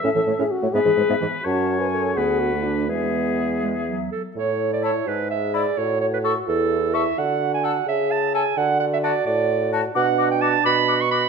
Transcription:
X:1
M:6/8
L:1/16
Q:3/8=85
K:A
V:1 name="Flute"
e A c e z c e G B e G z | a3 g3 f6 | e8- e2 z2 | z4 a z4 z b z |
z4 c' z4 z c' z | z4 a z4 z a z | z4 a z4 z a z | [K:Bm] d'2 d'2 d'2 d'2 d'2 d'2 |]
V:2 name="Clarinet"
C E, A, C z A, B, E, G, B, E, z | C6 B,3 A,3 | G,6 G,2 F,2 A2 | c3 d c2 B2 e2 d2 |
c2 c B A2 A4 e2 | f3 g f2 e2 a2 g2 | f2 f e d2 d4 z2 | [K:Bm] f3 g a2 b3 c' b2 |]
V:3 name="French horn"
A3 G F2 G4 z2 | F3 B A2 G2 F2 D2 | B,8- B,2 z2 | E6 G6 |
F6 E6 | F6 G6 | F12 | [K:Bm] D8- D2 z2 |]
V:4 name="Oboe"
e4 z2 B6 | c6 B6 | G8- G z3 | z4 E z4 z E z |
z4 A z4 z A z | z4 A z4 z A z | z4 F z4 z F z | [K:Bm] F2 F2 F2 F2 F2 F2 |]
V:5 name="Bassoon" clef=bass
A,, A,, A,, A,, z A,, G,, G,, G,, G,, G,, z | F,,6 D,,6 | E,,8- E,,2 z2 | A,,4- A,, z G,,4- G,, z |
A,,4- A,, z E,,4- E,, z | D,4- D, z C,4- C, z | D,4- D, z A,,4- A,, z | [K:Bm] B,,4- B,, z B,,4- B,, z |]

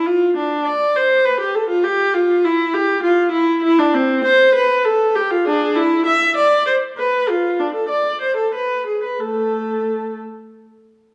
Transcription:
X:1
M:6/8
L:1/16
Q:3/8=66
K:Flyd
V:1 name="Viola"
F2 D2 d2 c2 B G A F | G2 F2 E2 G2 F2 E2 | [K:Am] E D C2 c2 B2 A2 G F | [D^G]2 E2 e2 d2 c2 B2 |
F2 D A d2 c A B2 ^G B | [A,A]6 z6 |]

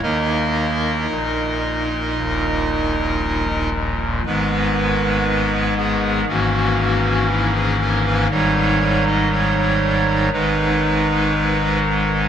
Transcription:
X:1
M:4/4
L:1/16
Q:1/4=59
K:G#m
V:1 name="Pipe organ"
[DAd]12- [DAd]2 z2 | B6 G2 F4 E G A B | c3 d c4 B6 z2 |]
V:2 name="Pipe organ" clef=bass
[D,,D,A,]4 [A,,,A,,]4 [D,,,D,,]8 | [G,,,G,,D,G,B,]8 [G,,,G,,E,A,C]8 | [G,,,G,,D,=G,D]8 [^G,,,G,,D,^G,D]8 |]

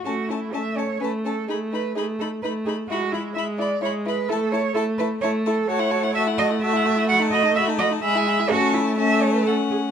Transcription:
X:1
M:3/4
L:1/16
Q:1/4=128
K:A
V:1 name="Violin"
a2 a2 a2 a2 a2 a2 | b2 b2 b2 b2 b2 b2 | b2 b2 b2 b2 b2 b2 | a2 a2 a2 a2 a2 a2 |
[K:Alyd] a f a f a f a f a f a f | b a b a b a b a b g b g | a4 a4 f4 |]
V:2 name="Cello"
F2 E2 e2 c2 B2 A2 | G2 B2 G2 A2 B2 G2 | F2 E2 e2 d2 c2 B2 | A2 c2 A2 B2 c2 A2 |
[K:Alyd] c4 e2 d2 e4 | f2 d2 e2 d2 e4 | F2 E2 e2 c B A2 G2 |]
V:3 name="Violin"
C2 C2 C2 C2 C2 C2 | ^D2 D2 D2 D2 D2 D2 | E2 E2 E2 E2 E2 E2 | E2 E2 E2 E2 E2 E2 |
[K:Alyd] F E F E F E F E F E F E | F D F D F D F D G E G E | C4 C4 C4 |]
V:4 name="Viola"
A,4 A,4 A,4 | A,4 A,4 A,4 | G,4 G,4 G,4 | A,4 A,4 A,4 |
[K:Alyd] A,12- | A,8 G,4 | A,12 |]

